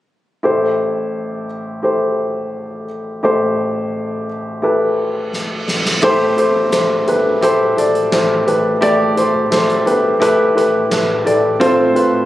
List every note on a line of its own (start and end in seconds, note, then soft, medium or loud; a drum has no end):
0.43 3.20 A1 medium
0.43 3.20 A2 medium
0.43 1.46 E4 medium
0.43 1.46 G4 medium
0.43 1.46 A4 medium
0.43 1.47 C5 medium
1.82 2.85 E4 medium
1.82 2.85 G4 medium
1.82 2.86 A4 soft
1.82 2.86 C5 medium
3.23 5.99 A1 medium
3.23 5.99 A2 medium
3.23 4.25 E4 medium
3.23 4.26 G4 medium
3.23 4.26 A4 medium
3.23 4.26 C5 medium
4.62 5.65 E4 medium
4.62 5.65 G4 medium
4.62 5.65 A4 medium
4.62 5.66 B4 medium
4.62 reverse cymbal medium
5.33 snare soft
5.68 snare medium
5.85 snare medium
6.02 6.32 A1 medium
6.02 7.04 A2 medium
6.02 6.28 E4 medium
6.02 6.28 G4 medium
6.02 6.29 A4 medium
6.02 6.29 C5 loud
6.02 kick medium
6.02 crash medium
6.02 downlifter medium
6.37 6.63 E4 medium
6.37 6.63 G4 medium
6.37 6.63 A4 medium
6.37 6.64 C5 medium
6.37 closed hi-hat medium
6.55 6.70 A1 medium
6.72 7.01 A1 loud
6.72 6.98 E4 medium
6.72 6.98 G4 medium
6.72 6.98 A4 medium
6.72 6.99 C5 medium
6.72 kick loud
6.72 snare medium
6.72 clap medium
6.72 closed hi-hat medium
7.06 7.36 G1 medium
7.06 7.33 E4 medium
7.06 7.33 G4 medium
7.06 7.33 A4 medium
7.06 7.34 B4 medium
7.06 closed hi-hat soft
7.41 7.71 A1 loud
7.41 7.67 E4 medium
7.41 7.68 G4 medium
7.41 7.68 A4 medium
7.41 7.68 C5 medium
7.41 kick medium
7.41 closed hi-hat medium
7.76 8.06 A1 medium
7.76 8.02 E4 medium
7.76 8.03 G4 medium
7.76 8.03 A4 medium
7.76 8.03 D5 medium
7.76 closed hi-hat medium
7.95 closed hi-hat soft
8.11 8.41 A1 loud
8.11 8.37 E4 medium
8.11 8.38 G4 medium
8.11 8.38 A4 medium
8.11 8.38 C5 medium
8.11 kick loud
8.11 snare medium
8.11 clap medium
8.11 closed hi-hat medium
8.46 8.76 A1 medium
8.46 8.72 E4 medium
8.46 8.72 G4 medium
8.46 8.73 A4 medium
8.46 8.73 B4 medium
8.46 closed hi-hat medium
8.81 9.11 A1 medium
8.81 9.83 A2 medium
8.81 9.07 E4 medium
8.81 9.07 G4 medium
8.81 9.08 A4 medium
8.81 9.08 D5 loud
8.81 kick medium
8.81 closed hi-hat medium
9.16 9.42 E4 medium
9.16 9.42 G4 medium
9.16 9.42 A4 medium
9.16 9.43 C5 medium
9.16 closed hi-hat medium
9.35 9.49 A1 medium
9.51 9.81 A1 loud
9.51 9.77 E4 medium
9.51 9.77 G4 medium
9.51 9.77 A4 medium
9.51 9.78 C5 medium
9.51 kick medium
9.51 snare loud
9.51 clap medium
9.51 closed hi-hat medium
9.69 closed hi-hat soft
9.85 10.15 G1 medium
9.85 10.11 E4 medium
9.85 10.12 G4 medium
9.85 10.12 A4 medium
9.85 10.12 B4 medium
9.85 closed hi-hat medium
10.20 10.50 A1 loud
10.20 10.46 E4 medium
10.20 10.47 G4 medium
10.20 10.47 A4 medium
10.20 10.47 B4 medium
10.20 kick medium
10.20 closed hi-hat medium
10.55 10.85 A1 loud
10.55 10.81 E4 medium
10.55 10.81 G4 medium
10.55 10.82 A4 medium
10.55 10.82 B4 medium
10.55 closed hi-hat medium
10.90 11.20 A1 medium
10.90 11.16 E4 medium
10.90 11.16 G4 medium
10.90 11.17 A4 medium
10.90 11.17 B4 medium
10.90 kick medium
10.90 snare medium
10.90 clap medium
10.90 closed hi-hat medium
11.24 11.55 A1 medium
11.24 11.51 E4 medium
11.24 11.51 G4 medium
11.24 11.51 A4 medium
11.24 11.52 D5 medium
11.24 closed hi-hat medium
11.60 11.90 A1 loud
11.60 12.25 A2 medium
11.60 11.86 C4 loud
11.60 11.86 F4 loud
11.60 11.86 A4 medium
11.60 11.87 C5 loud
11.60 kick medium
11.60 closed hi-hat medium
11.94 12.20 C4 medium
11.94 12.21 F4 medium
11.94 12.21 A4 medium
11.94 12.21 B4 medium
11.94 closed hi-hat medium
12.13 12.25 A1 medium